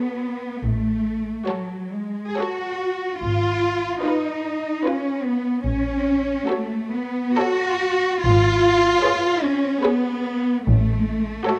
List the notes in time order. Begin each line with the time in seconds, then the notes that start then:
Already playing: B3 F#4 A4 C#5
0.62 A1 A3
1.47 F#3 F#4 A4 C#5
1.92 G#3
2.29 G#4
2.37 F#4 A4 C#5
3.20 G#1 F4
4.02 D#4 F4 B4
4.83 C#4 F4 B4
5.24 B3
5.65 A1 C#4
6.48 A3 F#4 A4 C#5
6.93 B3
7.37 F#4 A4 C#5
8.22 G#1 F4
9.03 G#4 B4 C#5
9.43 C#4
9.83 B3 G#4 B4 C#5
10.66 A1 A3
11.46 F#4 A4 C#5